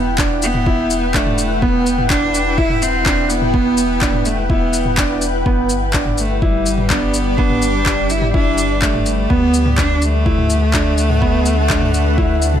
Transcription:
0.00 5.44 E1 medium
0.00 0.18 B3 medium
0.00 5.42 E4 medium
0.00 9.26 B4 medium
0.00 5.42 F#5 medium
0.00 5.42 G5 loud
0.18 0.44 D4 medium
0.18 kick loud
0.18 clap loud
0.42 1.17 B3 loud
0.42 shaker medium
0.54 mid tom medium
0.66 0.92 E4 medium
0.66 kick loud
0.90 shaker medium
1.14 1.64 A3 medium
1.14 1.39 D4 medium
1.14 kick loud
1.14 clap loud
1.26 mid tom medium
1.38 shaker medium
1.62 1.87 B3 medium
1.62 2.10 B3 loud
1.62 kick loud
1.86 shaker medium
1.98 mid tom medium
2.10 2.35 D4 medium
2.10 2.59 D4 loud
2.10 kick loud
2.10 clap loud
2.34 shaker medium
2.58 2.84 E4 loud
2.58 2.83 E4 medium
2.58 kick loud
2.70 mid tom medium
2.82 3.31 C4 loud
2.82 shaker medium
3.06 3.31 D4 medium
3.06 kick loud
3.06 clap medium
3.30 4.27 B3 loud
3.30 shaker medium
3.42 mid tom medium
3.54 3.79 B3 loud
3.54 kick loud
3.77 shaker medium
4.01 4.27 D4 medium
4.01 kick loud
4.01 clap medium
4.13 mid tom medium
4.25 4.49 A3 medium
4.25 shaker medium
4.49 5.18 B3 medium
4.49 4.75 E4 medium
4.49 kick loud
4.73 shaker medium
4.85 mid tom medium
4.97 5.23 D4 medium
4.97 kick loud
4.97 clap loud
5.22 shaker medium
5.46 9.27 G1 medium
5.46 9.26 G3 medium
5.46 5.71 B3 medium
5.46 9.26 G4 medium
5.46 9.26 D5 medium
5.46 kick loud
5.69 shaker medium
5.93 6.19 D4 medium
5.93 kick loud
5.93 clap medium
6.06 mid tom medium
6.18 6.35 A3 medium
6.18 shaker medium
6.35 6.44 A3 medium
6.42 6.92 G3 medium
6.42 6.67 E4 medium
6.42 kick loud
6.66 shaker medium
6.78 mid tom medium
6.90 7.39 B3 medium
6.90 7.15 D4 medium
6.90 kick medium
6.90 clap medium
7.14 shaker medium
7.38 7.64 B3 loud
7.38 8.12 D4 loud
7.38 kick loud
7.50 mid tom medium
7.62 shaker medium
7.86 8.11 D4 medium
7.86 kick medium
7.86 clap medium
8.10 8.34 E4 medium
8.10 shaker medium
8.22 mid tom medium
8.34 8.84 D4 loud
8.34 8.59 E4 medium
8.34 kick loud
8.58 shaker medium
8.82 9.32 A3 medium
8.82 9.07 D4 medium
8.82 kick loud
8.82 clap loud
8.94 mid tom medium
9.06 shaker medium
9.30 12.60 D2 medium
9.30 9.55 B3 loud
9.30 9.80 B3 loud
9.30 12.60 D4 medium
9.30 12.60 A4 medium
9.30 12.60 B4 medium
9.30 12.60 F#5 loud
9.30 kick loud
9.54 shaker medium
9.66 mid tom medium
9.78 10.03 D4 medium
9.78 10.04 D4 loud
9.78 kick loud
9.78 clap medium
10.02 12.60 A3 loud
10.02 shaker medium
10.26 10.51 E4 medium
10.26 kick loud
10.38 mid tom medium
10.50 shaker medium
10.74 10.99 D4 medium
10.74 kick medium
10.74 clap medium
10.98 shaker medium
11.10 mid tom medium
11.22 11.47 B3 loud
11.22 kick loud
11.46 shaker medium
11.70 11.95 D4 medium
11.70 kick loud
11.70 clap medium
11.82 mid tom medium
11.94 shaker medium
12.18 12.43 E4 medium
12.18 kick loud
12.42 shaker medium
12.54 mid tom medium

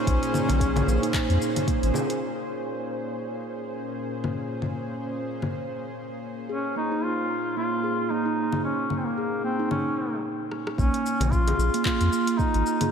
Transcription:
0.00 10.25 A#2 medium
0.00 10.25 A#3 medium
0.00 1.41 C#4 loud
0.00 10.25 C#4 medium
0.00 10.25 G#4 medium
0.00 10.25 C5 medium
0.07 0.18 A#1 loud
0.07 kick loud
0.07 closed hi-hat medium
0.07 shaker soft
0.23 closed hi-hat soft
0.23 shaker soft
0.33 0.59 A#3 medium
0.33 low conga medium
0.33 shaker medium
0.49 0.82 A#1 medium
0.49 closed hi-hat soft
0.49 frame drum medium
0.49 shaker soft
0.60 0.86 G#4 medium
0.60 kick loud
0.60 closed hi-hat medium
0.60 shaker soft
0.76 closed hi-hat soft
0.76 frame drum medium
0.76 low conga medium
0.76 shaker soft
0.87 0.98 A#1 loud
0.87 1.02 A#3 medium
0.87 shaker medium
1.02 1.13 D#4 loud
1.02 closed hi-hat soft
1.02 shaker soft
1.14 kick loud
1.14 clap medium
1.14 closed hi-hat medium
1.14 shaker soft
1.29 1.37 F2 loud
1.29 closed hi-hat soft
1.29 shaker soft
1.42 shaker medium
1.56 closed hi-hat soft
1.56 low conga medium
1.56 shaker soft
1.67 1.93 A#3 medium
1.67 kick loud
1.67 closed hi-hat medium
1.67 shaker soft
1.83 1.91 G#1 medium
1.83 closed hi-hat soft
1.83 shaker soft
1.94 2.20 G#4 medium
1.94 frame drum medium
1.94 shaker medium
2.10 closed hi-hat medium
2.10 shaker soft
4.24 low conga medium
4.62 low conga medium
5.42 low conga medium
6.49 6.75 C#4 medium
6.49 6.75 G#4 medium
6.76 6.91 A#3 medium
6.76 7.05 D#4 medium
6.92 7.03 D#4 medium
7.04 7.56 F4 loud
7.57 7.82 A#3 medium
7.57 8.12 F4 loud
7.84 8.09 G#4 medium
8.10 8.25 A#3 medium
8.10 8.63 D#4 medium
8.26 8.37 D#4 medium
8.52 low conga medium
8.64 9.00 C#4 medium
8.90 9.16 A#3 medium
8.90 low conga medium
8.99 9.08 C4 medium
9.06 9.43 A#3 medium
9.18 9.43 G#4 medium
9.44 9.59 A#3 medium
9.44 9.69 C4 medium
9.59 9.70 D#4 medium
9.71 10.21 C#4 medium
9.71 low conga medium
10.51 cross-stick medium
10.67 cross-stick medium
10.78 10.89 A#1 loud
10.78 10.93 A#3 medium
10.78 11.33 C#4 loud
10.78 kick loud
10.78 shaker soft
10.94 closed hi-hat soft
11.06 shaker medium
11.20 11.53 A#1 medium
11.20 closed hi-hat medium
11.20 frame drum medium
11.20 shaker soft
11.31 11.84 F4 loud
11.31 kick loud
11.31 shaker soft
11.47 11.73 G#4 medium
11.47 closed hi-hat soft
11.47 frame drum medium
11.58 11.69 A#1 loud
11.58 shaker medium
11.74 11.84 A#3 loud
11.74 closed hi-hat medium
11.74 shaker soft
11.85 12.39 F4 loud
11.85 11.95 F4 medium
11.85 kick loud
11.85 clap medium
11.85 shaker soft
12.00 12.09 F2 loud
12.00 closed hi-hat soft
12.00 shaker soft
12.13 12.27 A#3 medium
12.13 shaker medium
12.27 closed hi-hat medium
12.27 shaker soft
12.38 12.91 D#4 loud
12.38 kick loud
12.38 shaker soft
12.54 12.63 G#1 medium
12.54 closed hi-hat soft
12.66 shaker medium
12.81 12.91 G#4 medium
12.81 closed hi-hat medium
12.81 low conga medium
12.81 shaker soft

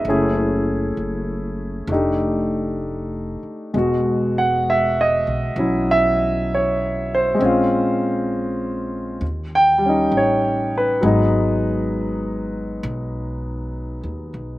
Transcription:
0.00 0.16 E5 medium
0.05 0.93 F#1 medium
0.05 1.87 A3 soft
0.05 1.91 C#4 soft
0.10 1.91 E4 soft
0.10 1.91 G#4 medium
0.97 1.85 F#1 medium
1.87 3.38 F1 medium
1.87 3.73 A3 soft
1.87 3.74 D4 soft
1.92 3.75 D#4 soft
1.92 3.76 G4 soft
3.43 muted upright bass stroke soft
3.74 5.23 E1 medium
3.74 7.40 B2 soft
3.74 7.33 G#3 soft
3.78 7.42 F#4 soft
4.38 4.66 F#5 medium
4.70 4.97 E5 medium
5.01 5.30 D#5 medium
5.27 5.55 B1 medium
5.56 7.35 B1 medium
5.56 7.40 F#3 soft
5.56 7.40 C#4 soft
5.60 7.41 E4 soft
5.91 6.46 E5 medium
6.54 7.08 C#5 medium
7.15 7.99 C5 medium
7.35 9.19 G#3 medium
7.35 9.21 C4 medium
7.41 9.18 A#1 medium
7.41 9.23 C#4 soft
7.45 9.24 F4 medium
9.21 10.08 D#2 medium
9.55 10.10 G5 medium
9.78 11.01 G3 soft
9.86 11.04 C#4 soft
9.86 11.04 D#4 soft
10.12 10.99 A1 medium
10.17 10.71 C#5 medium
10.78 11.61 B4 medium
11.01 12.79 G#1 medium
11.01 14.59 F#3 medium
11.01 14.59 G#3 soft
11.01 14.59 B3 soft
11.06 14.59 D#4 medium
12.83 14.00 B1 medium
14.04 14.32 D#2 medium
14.34 14.59 B1 medium

